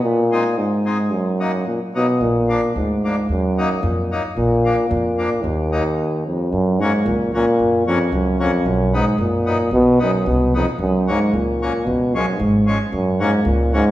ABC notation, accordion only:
X:1
M:2/4
L:1/8
Q:"Swing" 1/4=112
K:Ebm
V:1 name="Accordion"
z [A,=CE] z [A,CE] | z [G,B,E] z [G,B,E] | z [F,B,=D] z [F,B,D] | z [G,B,E] z [G,B,E] |
z [F,B,=D] z [F,B,D] | z [G,B,E] z2 | [K:F#] z [F,A,C] z [F,A,C] | z [F,A,C] z [F,A,C] |
z [F,B,D] z [F,B,D] | z [F,B,D] z [F,B,D] | z [F,A,C] z [F,A,C] | z [E,G,C] z [E,G,C] |
z [F,A,C] z [F,A,C] |]